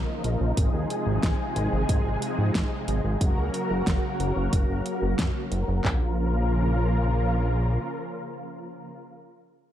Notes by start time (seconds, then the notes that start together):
Already playing: C#3 F3 A#3 D#4 A#4
0.24 A#1, closed hi-hat
0.41 A#1
0.57 G#1 C3 G#3 G#4, kick, closed hi-hat
0.74 D#2
0.90 closed hi-hat
1.07 G#1
1.23 G#1, kick, snare, closed hi-hat
1.56 G#1, closed hi-hat
1.73 G#1
1.89 G#1, kick, closed hi-hat
2.06 G#1
2.22 closed hi-hat
2.38 G#2
2.55 G#1, kick, snare, closed hi-hat
2.88 G#1, closed hi-hat
3.04 G#1
3.21 F#1 C#3 F#3 A#3 F#4 A#4, kick, closed hi-hat
3.37 C#2
3.54 closed hi-hat
3.70 F#1
3.87 F#1, kick, snare, closed hi-hat
4.20 F#1, closed hi-hat
4.36 F#1
4.53 F#1, kick, closed hi-hat
4.69 F#1
4.86 closed hi-hat
5.02 F#1
5.19 F#2, kick, snare, closed hi-hat
5.52 F#1, closed hi-hat
5.68 F#1
5.85 A#1 C#3 F3 A#3 F4 A#4, kick, clap, floor tom